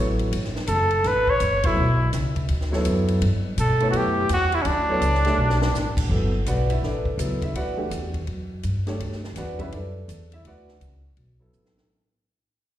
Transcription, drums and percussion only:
0.19 ride soft
0.33 ride medium
0.44 snare soft
0.56 snare soft
0.67 hi-hat pedal soft
0.67 ride medium
0.91 ride soft
1.04 snare soft
1.04 ride soft
1.27 kick medium
1.40 hi-hat pedal medium
1.40 ride medium
1.63 kick medium
1.63 ride medium
2.13 snare soft
2.13 hi-hat pedal medium
2.13 ride medium
2.36 kick medium
2.36 ride soft
2.48 ride medium
2.61 snare soft
2.73 snare soft
2.85 hi-hat pedal medium
2.85 ride medium
3.08 ride medium
3.22 ride medium
3.58 hi-hat pedal medium
3.58 ride medium
3.80 ride soft
3.93 ride medium
4.29 hi-hat pedal medium
4.29 ride medium
4.52 ride soft
4.65 ride medium
5.02 hi-hat pedal medium
5.02 ride medium
5.15 snare soft
5.25 snare soft
5.25 ride soft
5.50 snare medium
5.62 snare medium
5.75 snare medium
5.75 hi-hat pedal medium
5.97 kick medium
5.97 crash medium
6.46 hi-hat pedal medium
6.46 ride medium
6.70 ride medium
6.83 snare soft
7.05 kick medium
7.19 hi-hat pedal medium
7.19 ride medium
7.42 kick soft
7.42 ride soft
7.55 ride medium
7.91 hi-hat pedal soft
7.91 ride medium
8.14 kick soft
8.14 ride soft
8.27 ride soft
8.63 hi-hat pedal medium
8.63 ride medium
8.87 snare soft
8.87 ride soft
9.00 ride medium
9.12 snare soft
9.24 snare soft
9.36 snare soft
9.36 hi-hat pedal medium
9.36 ride medium
9.59 kick medium
9.59 ride soft
9.72 ride medium
10.09 hi-hat pedal medium
10.09 ride medium
10.32 ride soft
10.45 ride medium
10.68 snare soft
10.81 hi-hat pedal medium
10.81 ride medium
11.17 ride medium
11.53 hi-hat pedal medium
11.65 snare medium
11.77 snare medium

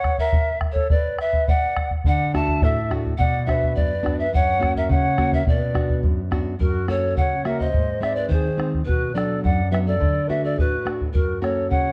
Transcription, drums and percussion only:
0.04 bombo rim soft
0.04 bombo low medium
0.18 bombo low medium
0.32 bombo low medium
0.61 bombo rim medium
0.61 bombo low medium
0.75 bombo low medium
0.90 bombo low medium
1.19 bombo rim medium
1.33 bombo low medium
1.48 bombo low medium
1.77 bombo rim medium
1.77 bombo low medium
1.91 bombo low medium
2.04 bombo low medium
2.35 bombo rim medium
2.35 bombo low medium
2.48 bombo low soft
2.62 bombo low medium
2.91 bombo rim soft
2.91 bombo low soft
3.06 bombo low soft
3.20 bombo low medium
3.49 bombo rim soft
3.49 bombo low soft
3.64 bombo low soft
3.77 bombo low medium
4.06 bombo rim soft
4.06 bombo low soft
4.35 bombo low medium
4.63 bombo rim soft
4.63 bombo low soft
4.76 bombo low soft
4.91 bombo low medium
5.18 bombo rim medium
5.18 bombo low medium
5.32 bombo low medium
5.47 bombo low medium
5.75 bombo rim medium
5.75 bombo low medium
5.90 bombo low medium
6.04 bombo low medium
6.32 bombo rim medium
6.32 bombo low medium
6.61 bombo low medium
6.88 bombo rim soft
7.17 bombo low medium
7.45 bombo rim soft
7.61 bombo low soft
7.74 bombo low medium
8.03 bombo rim soft
8.31 bombo low medium
8.60 bombo rim medium
8.75 bombo low soft
8.89 bombo low medium
9.18 bombo rim medium
9.45 bombo low medium
9.74 bombo rim medium
10.02 bombo low medium
10.59 bombo low medium
10.87 bombo rim medium
11.01 bombo low soft
11.15 bombo low medium
11.44 bombo rim medium
11.72 bombo low medium

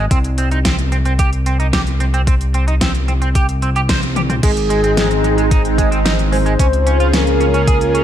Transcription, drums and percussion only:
0.11 kick loud
0.11 closed hi-hat medium
0.24 closed hi-hat soft
0.38 closed hi-hat medium
0.51 closed hi-hat soft
0.65 kick loud
0.65 snare loud
0.65 closed hi-hat medium
0.79 closed hi-hat soft
0.92 closed hi-hat soft
1.05 closed hi-hat soft
1.19 kick loud
1.19 closed hi-hat medium
1.33 closed hi-hat soft
1.46 closed hi-hat medium
1.60 closed hi-hat soft
1.73 kick loud
1.73 snare loud
1.73 closed hi-hat medium
1.87 closed hi-hat soft
2.00 closed hi-hat medium
2.14 closed hi-hat soft
2.27 kick loud
2.27 closed hi-hat medium
2.41 closed hi-hat soft
2.54 closed hi-hat medium
2.68 closed hi-hat soft
2.81 kick loud
2.81 snare loud
2.81 closed hi-hat medium
2.95 closed hi-hat soft
3.08 closed hi-hat soft
3.22 closed hi-hat soft
3.35 kick loud
3.35 closed hi-hat medium
3.49 closed hi-hat soft
3.62 closed hi-hat medium
3.76 closed hi-hat soft
3.89 kick loud
3.89 snare loud
3.89 closed hi-hat medium
4.03 closed hi-hat soft
4.16 closed hi-hat medium
4.16 high tom medium
4.30 closed hi-hat soft
4.30 mid tom medium
4.43 kick loud
4.43 closed hi-hat medium
4.43 crash loud
4.57 closed hi-hat soft
4.70 closed hi-hat medium
4.84 closed hi-hat soft
4.97 snare loud
4.97 closed hi-hat loud
5.11 closed hi-hat soft
5.24 closed hi-hat soft
5.38 closed hi-hat soft
5.51 kick loud
5.51 closed hi-hat medium
5.65 closed hi-hat soft
5.78 kick medium
5.78 closed hi-hat medium
5.92 closed hi-hat soft
6.06 snare loud
6.06 closed hi-hat loud
6.19 closed hi-hat soft
6.32 open hi-hat medium
6.46 closed hi-hat soft
6.59 kick loud
6.59 closed hi-hat loud
6.73 closed hi-hat soft
6.87 closed hi-hat medium
7.00 closed hi-hat soft
7.13 snare loud
7.13 closed hi-hat loud
7.27 closed hi-hat soft
7.40 closed hi-hat soft
7.54 closed hi-hat soft
7.67 kick loud
7.67 closed hi-hat loud
7.81 closed hi-hat soft
7.95 closed hi-hat medium

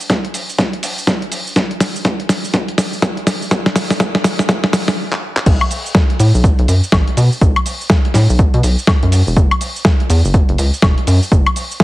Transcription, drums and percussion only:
0.01 shaker soft
0.10 kick loud
0.10 snare medium
0.10 closed hi-hat medium
0.10 shaker soft
0.25 closed hi-hat medium
0.34 open hi-hat loud
0.34 shaker medium
0.49 shaker soft
0.58 kick loud
0.58 snare medium
0.58 closed hi-hat medium
0.58 shaker soft
0.73 closed hi-hat medium
0.83 open hi-hat loud
0.83 shaker medium
0.98 shaker soft
1.07 kick loud
1.07 snare medium
1.07 closed hi-hat medium
1.07 shaker soft
1.22 closed hi-hat medium
1.32 open hi-hat loud
1.32 shaker medium
1.47 shaker soft
1.56 kick loud
1.56 snare medium
1.56 closed hi-hat medium
1.56 shaker soft
1.71 closed hi-hat medium
1.80 snare medium
1.80 open hi-hat loud
1.80 shaker medium
1.96 shaker soft
2.05 kick loud
2.05 snare medium
2.05 closed hi-hat medium
2.05 shaker soft
2.20 closed hi-hat medium
2.29 snare medium
2.29 open hi-hat loud
2.29 shaker medium
2.45 shaker soft
2.54 kick loud
2.54 snare medium
2.54 closed hi-hat medium
2.54 shaker soft
2.68 closed hi-hat medium
2.78 snare medium
2.78 open hi-hat loud
2.78 shaker medium
2.93 shaker soft
3.02 kick loud
3.02 snare medium
3.02 closed hi-hat medium
3.02 shaker soft
3.17 closed hi-hat medium
3.27 snare medium
3.27 open hi-hat loud
3.27 shaker medium
3.42 shaker soft
3.51 kick loud
3.51 snare medium
3.51 closed hi-hat medium
3.51 shaker soft
3.66 snare medium
3.66 closed hi-hat soft
3.76 snare loud
3.76 open hi-hat loud
3.76 shaker medium
3.90 snare medium
3.90 shaker soft
4.00 kick loud
4.00 snare loud
4.00 closed hi-hat medium
4.00 shaker soft
4.15 snare medium
4.15 closed hi-hat medium
4.24 snare loud
4.24 open hi-hat loud
4.24 shaker medium
4.39 snare medium
4.39 shaker soft
4.49 kick loud
4.49 snare loud
4.49 closed hi-hat medium
4.49 shaker soft
4.64 snare medium
4.64 closed hi-hat medium
4.73 snare loud
4.73 open hi-hat loud
4.73 shaker medium
4.88 snare medium
4.88 shaker soft
5.12 clap medium
5.37 clap loud
5.46 kick loud
5.46 closed hi-hat medium
5.46 crash loud
5.46 shaker soft
5.61 closed hi-hat medium
5.61 high woodblock medium
5.71 open hi-hat loud
5.71 shaker medium
5.86 shaker soft
5.95 kick loud
5.95 snare loud
5.95 closed hi-hat medium
5.95 shaker soft
6.10 closed hi-hat medium
6.19 open hi-hat loud
6.19 shaker medium
6.35 shaker soft
6.44 kick loud
6.44 closed hi-hat medium
6.44 shaker soft
6.59 closed hi-hat medium
6.68 open hi-hat loud
6.68 shaker medium
6.84 shaker soft
6.92 kick loud
6.92 snare loud
6.92 closed hi-hat medium
6.92 high woodblock medium
6.92 shaker soft
7.08 closed hi-hat medium
7.17 open hi-hat loud
7.17 shaker medium
7.32 shaker soft
7.41 kick loud
7.41 closed hi-hat medium
7.41 shaker soft
7.56 closed hi-hat medium
7.56 high woodblock medium
7.66 open hi-hat loud
7.66 shaker medium
7.81 shaker soft
7.90 kick loud
7.90 snare loud
7.90 closed hi-hat medium
7.90 shaker soft
8.05 closed hi-hat medium
8.14 snare soft
8.14 open hi-hat loud
8.14 shaker medium
8.30 shaker soft
8.39 kick loud
8.39 closed hi-hat medium
8.39 shaker soft
8.54 closed hi-hat medium
8.63 open hi-hat loud
8.63 shaker medium
8.79 shaker soft
8.87 kick loud
8.87 snare loud
8.87 closed hi-hat medium
8.87 high woodblock medium
8.87 shaker soft
9.03 closed hi-hat medium
9.12 open hi-hat loud
9.12 shaker medium
9.27 shaker soft
9.37 kick loud
9.37 closed hi-hat medium
9.37 shaker soft
9.51 closed hi-hat medium
9.51 high woodblock medium
9.61 open hi-hat loud
9.61 shaker medium
9.76 shaker soft
9.85 kick loud
9.85 snare loud
9.85 closed hi-hat medium
9.85 shaker soft
10.00 closed hi-hat medium
10.10 open hi-hat loud
10.10 shaker medium
10.25 shaker soft
10.34 kick loud
10.34 closed hi-hat medium
10.34 shaker soft
10.49 closed hi-hat medium
10.58 open hi-hat loud
10.58 shaker medium
10.74 shaker soft
10.82 kick loud
10.82 snare loud
10.82 closed hi-hat medium
10.82 high woodblock medium
10.82 shaker soft
10.98 closed hi-hat medium
11.07 open hi-hat loud
11.07 shaker medium
11.23 shaker soft
11.32 kick loud
11.32 closed hi-hat medium
11.32 shaker soft
11.46 closed hi-hat medium
11.46 high woodblock medium
11.56 open hi-hat loud
11.56 shaker medium
11.71 shaker soft
11.80 kick loud
11.80 snare loud
11.80 closed hi-hat medium

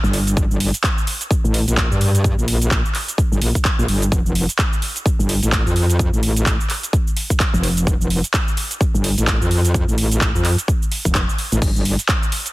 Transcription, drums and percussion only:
0.04 cabasa soft
0.13 open hi-hat loud
0.27 closed hi-hat medium
0.27 cabasa medium
0.37 kick loud
0.37 closed hi-hat soft
0.37 cabasa medium
0.51 cabasa soft
0.60 open hi-hat loud
0.74 closed hi-hat medium
0.74 cabasa medium
0.84 kick loud
0.84 clap loud
0.84 closed hi-hat soft
0.84 cabasa medium
0.98 cabasa soft
1.07 open hi-hat loud
1.21 closed hi-hat medium
1.21 cabasa medium
1.31 kick loud
1.31 closed hi-hat medium
1.31 cabasa medium
1.45 cabasa soft
1.54 open hi-hat loud
1.68 closed hi-hat medium
1.68 cabasa medium
1.77 kick loud
1.77 clap loud
1.77 closed hi-hat medium
1.77 cabasa medium
1.92 cabasa soft
2.01 open hi-hat loud
2.15 closed hi-hat medium
2.15 cabasa medium
2.24 kick loud
2.24 closed hi-hat soft
2.24 cabasa medium
2.39 cabasa soft
2.48 open hi-hat loud
2.62 closed hi-hat medium
2.62 cabasa medium
2.71 kick loud
2.71 clap loud
2.71 closed hi-hat medium
2.71 cabasa medium
2.86 cabasa soft
2.95 clap soft
2.95 open hi-hat loud
3.08 closed hi-hat medium
3.08 cabasa medium
3.18 kick loud
3.18 closed hi-hat soft
3.18 cabasa medium
3.32 cabasa soft
3.42 open hi-hat loud
3.55 kick medium
3.55 closed hi-hat medium
3.55 cabasa medium
3.65 kick loud
3.65 clap loud
3.65 closed hi-hat medium
3.65 cabasa medium
3.79 cabasa soft
3.88 open hi-hat loud
4.02 closed hi-hat medium
4.02 cabasa medium
4.12 kick loud
4.12 closed hi-hat medium
4.12 cabasa medium
4.26 cabasa soft
4.35 open hi-hat loud
4.49 closed hi-hat medium
4.49 cabasa medium
4.59 kick loud
4.59 clap loud
4.59 closed hi-hat medium
4.59 cabasa medium
4.73 cabasa soft
4.82 open hi-hat loud
4.96 closed hi-hat medium
4.96 cabasa medium
5.06 kick loud
5.06 closed hi-hat soft
5.06 cabasa medium
5.20 cabasa soft
5.29 open hi-hat loud
5.43 closed hi-hat medium
5.43 cabasa medium
5.52 kick loud
5.52 clap loud
5.52 closed hi-hat medium
5.52 cabasa medium
5.67 cabasa soft
5.76 open hi-hat loud
5.90 closed hi-hat medium
5.90 cabasa medium
5.99 kick loud
5.99 closed hi-hat medium
5.99 cabasa medium
6.14 cabasa soft
6.23 open hi-hat loud
6.36 closed hi-hat medium
6.36 cabasa medium
6.46 kick loud
6.46 clap loud
6.46 closed hi-hat medium
6.46 cabasa medium
6.61 cabasa soft
6.70 clap soft
6.70 open hi-hat loud
6.83 closed hi-hat medium
6.83 cabasa medium
6.93 kick loud
6.93 closed hi-hat medium
6.93 cabasa medium
7.07 cabasa soft
7.17 open hi-hat loud
7.30 kick medium
7.30 closed hi-hat medium
7.30 cabasa medium
7.40 kick loud
7.40 clap loud
7.40 closed hi-hat medium
7.40 cabasa medium
7.54 cabasa soft
7.63 open hi-hat loud
7.77 closed hi-hat medium
7.77 cabasa medium
7.87 kick loud
7.87 closed hi-hat medium
7.87 cabasa medium
8.01 cabasa soft
8.10 open hi-hat loud
8.24 closed hi-hat medium
8.24 cabasa medium
8.34 kick loud
8.34 clap loud
8.34 closed hi-hat medium
8.34 cabasa medium
8.48 cabasa soft
8.57 open hi-hat loud
8.71 closed hi-hat medium
8.71 cabasa medium
8.81 kick loud
8.81 closed hi-hat medium
8.81 cabasa medium
8.95 cabasa soft
9.04 open hi-hat loud
9.18 closed hi-hat medium
9.18 cabasa medium
9.27 kick loud
9.27 clap loud
9.27 closed hi-hat medium
9.27 cabasa medium
9.42 cabasa soft
9.51 open hi-hat loud
9.65 closed hi-hat medium
9.65 cabasa medium
9.74 kick loud
9.74 closed hi-hat medium
9.74 cabasa medium
9.89 cabasa soft
9.98 open hi-hat loud
10.12 closed hi-hat medium
10.12 cabasa medium
10.21 kick loud
10.21 clap loud
10.21 closed hi-hat medium
10.21 cabasa medium
10.36 cabasa soft
10.45 clap soft
10.45 open hi-hat loud
10.58 closed hi-hat medium
10.58 cabasa medium
10.68 kick loud
10.68 closed hi-hat medium
10.68 cabasa medium
10.82 cabasa soft
10.92 open hi-hat loud
11.05 kick medium
11.05 closed hi-hat medium
11.05 cabasa medium
11.15 kick loud
11.15 clap loud
11.15 closed hi-hat medium
11.15 cabasa medium
11.29 cabasa soft
11.38 open hi-hat loud
11.52 closed hi-hat medium
11.52 cabasa medium
11.62 kick loud
11.62 closed hi-hat medium
11.62 crash medium
11.62 cabasa medium
11.76 cabasa soft
11.85 open hi-hat loud
11.99 closed hi-hat medium
11.99 cabasa medium
12.09 kick loud
12.09 clap loud
12.09 closed hi-hat medium
12.09 cabasa medium
12.23 cabasa soft
12.32 open hi-hat loud
12.46 closed hi-hat medium
12.46 cabasa medium

